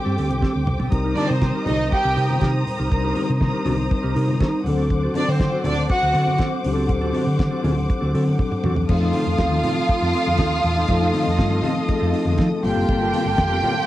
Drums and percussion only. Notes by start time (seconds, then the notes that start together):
0.06 muted conga
0.18 open hi-hat
0.29 closed hi-hat, high conga
0.42 kick, snare
0.55 muted conga
0.66 mid tom, low conga
0.80 floor tom
0.92 kick, closed hi-hat
1.16 open hi-hat, high conga
1.42 kick, snare, closed hi-hat, high conga
1.66 open hi-hat, high conga, low conga
1.92 kick, closed hi-hat
2.04 muted conga
2.17 open hi-hat
2.30 high conga
2.41 kick, snare, closed hi-hat
2.54 muted conga
2.67 open hi-hat, low conga
2.92 kick, closed hi-hat
3.04 muted conga
3.15 open hi-hat, high conga
3.41 kick, snare, closed hi-hat, muted conga, high conga
3.66 open hi-hat, high conga, low conga
3.91 kick, closed hi-hat
4.03 muted conga
4.16 open hi-hat
4.28 high conga
4.40 kick, snare, closed hi-hat, muted conga
4.64 open hi-hat, low conga
4.90 kick, closed hi-hat
5.14 open hi-hat, high conga
5.40 kick, snare, closed hi-hat, muted conga, high conga
5.52 muted conga
5.64 open hi-hat, high conga, low conga
5.90 kick, closed hi-hat
6.03 muted conga
6.15 open hi-hat
6.28 high conga
6.38 kick, snare, closed hi-hat, muted conga
6.64 open hi-hat, low conga
6.88 kick, closed hi-hat, low conga
7.02 muted conga
7.13 open hi-hat, high conga
7.39 kick, snare, closed hi-hat, muted conga, high conga
7.64 open hi-hat, high conga, low conga
7.90 kick, closed hi-hat
8.03 muted conga
8.15 open hi-hat
8.28 high conga
8.39 kick, high tom, muted conga
8.52 mid tom
8.64 mid tom, low conga
8.76 floor tom
8.89 kick, crash, low conga
9.02 muted conga
9.13 open hi-hat, high conga
9.38 kick, snare, closed hi-hat, muted conga, high conga
9.63 open hi-hat, high conga, low conga
9.88 kick, closed hi-hat
10.02 muted conga
10.13 open hi-hat
10.27 high conga
10.37 kick, snare, closed hi-hat, muted conga
10.53 muted conga
10.63 open hi-hat, low conga
10.88 kick, closed hi-hat, muted conga, low conga
11.02 muted conga
11.13 open hi-hat, high conga
11.38 kick, snare, closed hi-hat, muted conga, high conga
11.51 muted conga
11.63 open hi-hat, high conga, low conga
11.88 kick, closed hi-hat
12.00 muted conga
12.14 open hi-hat
12.25 high conga
12.38 kick, snare, closed hi-hat, muted conga
12.52 muted conga
12.63 open hi-hat, low conga
12.88 kick, closed hi-hat, muted conga, low conga
13.13 open hi-hat, high conga
13.38 kick, snare, closed hi-hat, high conga
13.63 open hi-hat, high conga, low conga